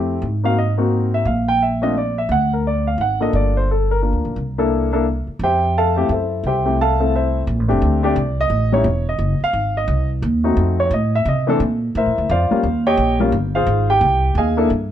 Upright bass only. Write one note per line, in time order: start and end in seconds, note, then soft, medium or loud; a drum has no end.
0.00 0.18 F2 medium
0.22 1.22 G#2 medium
1.25 2.25 A#1 medium
2.29 2.95 D2 medium
2.98 3.30 G#1 medium
3.33 4.10 G1 medium
4.13 4.24 D2 medium
4.25 4.36 A#1 medium
4.36 5.23 C2 medium
5.27 muted upright bass stroke soft
5.39 6.05 F2 medium
6.09 6.41 F#2 medium
6.44 7.43 C2 medium
7.47 7.59 A#1 medium
7.59 7.70 A1 medium
7.71 7.81 F1 medium
7.82 8.15 D2 medium
8.16 8.49 C2 medium
8.50 8.83 A1 medium
8.84 9.18 E1 medium
9.19 9.39 F#1 medium
9.41 muted upright bass stroke soft
9.53 9.87 G#1 medium
9.88 10.21 C2 medium
10.22 10.56 D#2 medium
10.57 10.90 F2 medium
10.91 11.25 A2 loud
11.25 11.59 C3 medium
11.60 11.94 A#2 medium
11.95 12.08 A2 medium
12.06 12.17 F2 medium
12.18 12.29 D2 medium
12.29 12.49 F2 medium
12.51 muted upright bass stroke soft
12.63 12.97 D#2 medium
12.97 13.31 A#1 medium
13.32 13.66 G1 medium
13.67 14.00 G#1 medium
14.01 14.34 C2 medium
14.35 14.69 D#2 medium
14.70 14.92 G2 medium